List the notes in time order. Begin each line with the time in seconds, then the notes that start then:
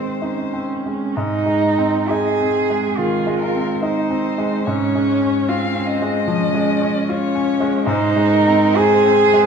Already playing: D#3 G#3 C4 D#4 C5
0.21 C#4 D#4
0.54 C4
0.86 G#3
1.15 G#2 D#4
1.46 G#3
1.78 C4
2.09 D#4 G#4
2.41 C4
2.70 G#3
2.97 D#3 F4 G#4
3.27 G#3
3.39 A#4
3.55 C4
3.80 D#4 C5
4.10 C4
4.38 G#3
4.65 G#2 C#4 C#5
4.95 G#3
5.22 C#4
5.48 C4 F4 F5
5.76 C#4
5.86 D#5
6.02 G#3
6.28 F3 C#4
6.55 G#3
6.81 C#4
7.09 C#4 F4 C#5
7.35 C#4
7.60 G#3
7.86 G#2 D#4 C5
8.16 G#3
8.32 A#4
8.48 C4
8.75 G#4 C5
9.06 C4
9.18 C5
9.34 G#3